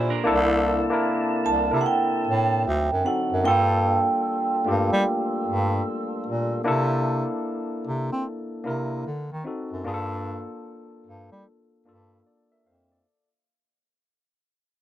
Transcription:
Already playing: bass clarinet A#2, tine electric piano A#3 D4 F4 G4
0.10 clean electric guitar D4 A#4
0.24 bass clarinet C2, tonewheel organ C3 C4 D4 E4 A5, tine electric piano A#3 D4 E4 A4
0.90 tine electric piano A#3 D4 E4 A#4
1.46 bass clarinet C2, vibraphone A5
1.71 bass clarinet C3, tine electric piano D4 E4 A4 A#4
1.81 vibraphone F#5
1.86 vibraphone G5
2.28 bass clarinet A2
2.65 bass clarinet D2, tonewheel organ D3 F#3 C4 D#4
2.92 bass clarinet F#2
3.05 tine electric piano C4 D#4 F#4 A4, vibraphone F#5
3.32 bass clarinet F#2
3.44 bass clarinet G2, tonewheel organ G3 A#3 F4 A4, tine electric piano A#3 D4 F4 A4, vibraphone G5
4.65 bass clarinet G2, tine electric piano A3 D4 F4 G4
4.71 tine electric piano A#3
4.93 bass clarinet G3
5.47 bass clarinet G2
6.27 bass clarinet A#2
6.64 bass clarinet C3, tine electric piano A#3 D4 E4 A4
7.87 bass clarinet C3
8.12 bass clarinet C4
8.64 bass clarinet C3, tine electric piano A#3 D4 E4 A#4
9.07 bass clarinet D3
9.33 bass clarinet D#3
9.44 tine electric piano C4 D#4 F#4 A4
9.72 bass clarinet F#2
9.84 bass clarinet G2, tine electric piano A#3 D4 F4 G#4
9.94 tine electric piano A4
11.06 bass clarinet G2
11.32 bass clarinet G3
11.85 bass clarinet G2, tine electric piano A#3 D4 F4 A4
12.27 tine electric piano A4 D5
12.52 tine electric piano A#4 E5
12.66 bass clarinet F2, tine electric piano C5 F5
12.92 tine electric piano A4 D5

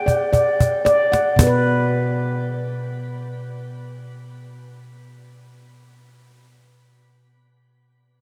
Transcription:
Already playing: handpan B3 F#5
0.06 handpan D5, cajon bass
0.33 handpan D5, cajon bass
0.60 cajon bass
0.85 handpan D5, cajon slap
1.12 handpan F#5, cajon slap
1.36 handpan B2 B3, cajon bass
1.43 handpan B4

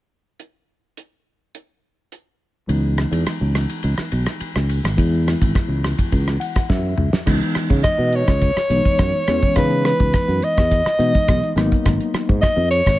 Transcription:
0.40 closed hi-hat
0.97 closed hi-hat
1.55 closed hi-hat
2.12 closed hi-hat
2.67 fretless electric bass C#2, reed electric piano E3 G#3 B3 D#4, ride
2.98 cross-stick, ride
3.11 fretless electric bass E2, ride
3.25 muted fretless electric bass stroke, cross-stick, ride
3.41 fretless electric bass C#2
3.55 cross-stick, ride
3.69 ride
3.83 fretless electric bass C#2, ride
3.98 muted fretless electric bass stroke, cross-stick
4.12 fretless electric bass B1, ride
4.26 cross-stick, ride
4.40 muted fretless electric bass stroke, ride
4.56 fretless electric bass C#2, cross-stick
4.69 ride
4.84 fretless electric bass G#1, cross-stick, ride
4.97 fretless electric bass E2, reed electric piano E3 G#3 B3 E4, kick, ride
5.28 cross-stick, ride
5.41 fretless electric bass G#1, kick, ride
5.55 kick, cross-stick, ride
5.68 fretless electric bass C#2
5.84 cross-stick, ride
5.99 kick, ride
6.12 fretless electric bass C#2, kick, ride
6.28 cross-stick
6.40 reed electric piano F#5, ride
6.56 kick, cross-stick, ride
6.69 fretless electric bass F#2, reed electric piano E5, kick, snare
6.98 fretless electric bass C#2, mid tom
7.13 muted fretless electric bass stroke, snare
7.26 fretless electric bass C#2, reed electric piano E3 G#3 B3 D#4, kick, cross-stick, crash
7.41 closed hi-hat
7.55 muted fretless electric bass stroke, cross-stick, closed hi-hat
7.70 fretless electric bass C#3, kick
7.83 soprano saxophone D#5, kick, cross-stick, closed hi-hat
7.98 fretless electric bass B2
8.13 soprano saxophone C#5, closed hi-hat
8.27 fretless electric bass C#2, kick, cross-stick, closed hi-hat
8.42 kick, closed hi-hat
8.56 muted fretless electric bass stroke, cross-stick, closed hi-hat
8.70 fretless electric bass B1, reed electric piano E3 G#3 B3 D#4, closed hi-hat
8.85 kick, closed hi-hat
8.99 fretless electric bass F#2, kick, cross-stick, closed hi-hat
9.27 fretless electric bass E2, reed electric piano E3 G#3 B3 C#4, cross-stick, closed hi-hat
9.43 kick
9.55 fretless electric bass C#3, reed electric piano E3 G#3 B3 D#4, soprano saxophone B4, kick, cross-stick, closed hi-hat
9.71 closed hi-hat
9.85 soprano saxophone B4, cross-stick, closed hi-hat
10.00 fretless electric bass C#2, kick, closed hi-hat
10.13 kick, cross-stick, closed hi-hat
10.28 fretless electric bass F#2, closed hi-hat
10.42 soprano saxophone D#5, closed hi-hat
10.58 fretless electric bass E2, kick, cross-stick
10.71 kick, closed hi-hat
10.85 muted fretless electric bass stroke, cross-stick, closed hi-hat
10.99 fretless electric bass B2, reed electric piano E3 G#3 B3 D#4, closed hi-hat
11.15 kick, closed hi-hat
11.28 fretless electric bass B1, kick, cross-stick, closed hi-hat
11.43 closed hi-hat
11.56 fretless electric bass G#1, reed electric piano F#3 A#3 B3 D#4, cross-stick, closed hi-hat
11.72 kick, closed hi-hat
11.85 fretless electric bass G#1, kick, cross-stick, closed hi-hat
12.00 closed hi-hat
12.13 muted fretless electric bass stroke, cross-stick, closed hi-hat
12.29 fretless electric bass G#2, kick
12.41 soprano saxophone D#5, kick, cross-stick, closed hi-hat
12.56 fretless electric bass F2
12.71 soprano saxophone C#5, closed hi-hat
12.86 fretless electric bass G#1, kick, cross-stick, closed hi-hat

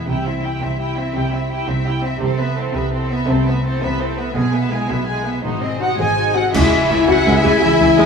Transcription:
Already playing: harp E4
0.07 double bass section C2, cello section C3, harp C3, viola section E4, violin section G4 G5
0.25 harp C4, viola section C4, violin section E4 E5
0.43 harp E4, viola section E4, violin section G4 G5
0.61 double bass section C2, cello section C3, viola section C4, violin section E4 E5, harp G4
0.80 harp E4, viola section E4, violin section G4 G5
0.97 viola section C4, harp C4, violin section E4 E5
1.14 double bass section C2, cello section C3, harp G3, viola section E4, violin section G4 G5
1.32 viola section C4, harp C4, violin section E4 E5
1.50 harp E4, viola section E4, violin section G4 G5
1.67 double bass section C2, cello section C3, viola section C4, violin section E4 E5, harp G4
1.86 harp E4, viola section E4, violin section G4 G5
2.03 viola section C4, harp C4, violin section E4 E5
2.21 double bass section C2, cello section C3, harp C3, viola section C4, violin section A4 C5
2.39 viola section B3, harp B3, violin section B4 E5
2.56 viola section C4, harp E4, violin section A4 C5
2.74 double bass section C2, cello section C3, viola section B3, harp A4, violin section B4 E5
2.92 viola section C4, harp E4, violin section A4 C5
3.10 harp B3, viola section B3, violin section B4 E5
3.28 double bass section C2, harp C3, cello section C3, viola section C4, violin section A4 C5
3.46 harp A3, viola section B3, violin section B4 E5
3.64 viola section C4, harp E4, violin section A4 C5
3.82 double bass section C2, cello section C3, viola section B3, harp A4, violin section B4 E5
4.00 viola section C4, harp E4, violin section A4 C5
4.18 viola section B3, harp B3, violin section B4 E5
4.35 double bass section B1, cello section B2, harp B2, viola section G#3, violin section G#4 G#5
4.52 viola section B3, harp B3, violin section B4 E5
4.71 viola section G#3, harp E4, violin section G#4 G#5
4.89 double bass section B1, cello section B2, viola section B3, violin section B4 E5
5.07 viola section G#3, harp E4, violin section G#4 G#5
5.25 viola section B3, harp B3, violin section B4 E5
5.44 double bass section G#1, cello section G#2, harp G#2, viola section D#4, violin section F#4 C5
5.62 harp C4, viola section C4, violin section G#4 D#5
5.80 viola section D#4, harp D#4, violin section F#4 C5 F#5, french horn section F#4, flute section F#5
5.98 double bass section G#1, cello section G#2, viola section C4, harp F#4, violin section G#4 D#5 G#5, french horn section G#4, flute section G#5
6.17 harp D#4, viola section D#4, violin section F#4 C5
6.34 viola section C4, harp C4, french horn section F#4, violin section G#4 D#5 F#5, flute section F#5
6.53 cello section C#2, double bass section C#2, tuba C#2, harp C#3, viola section G#3 E4, french horn section E4, violin section E5 G#5, flute section E5, clarinet E5, oboe G#5, concert bass drum, crash
6.72 harp C#4
6.89 cello section C#2, double bass section C#2, tuba C#2, viola section C#3, french horn section E4, harp E4, violin section E5, flute section E5
7.07 cello section C#2, tuba C#2, double bass section C#2, viola section E3, french horn section F#4, flute section F#5, violin section F#5
7.26 cello section C#2, tuba C#2, double bass section C#2, viola section G#3, harp C#5
7.35 french horn section E4, violin section E5, flute section E5
7.43 tuba C#2, cello section C#2, double bass section C#2, viola section E3, french horn section G#4, violin section G#5, flute section G#5
7.61 tuba C#2, cello section C#2, double bass section C#2, viola section C#3, harp E3, french horn section E4, violin section E5, flute section E5
7.80 tuba C#2, cello section C#2, double bass section C#2, viola section E3, harp C#4
7.97 cello section C#2, tuba C#2, double bass section C#2, viola section G#3, french horn section D#4, violin section D#5, flute section D#5

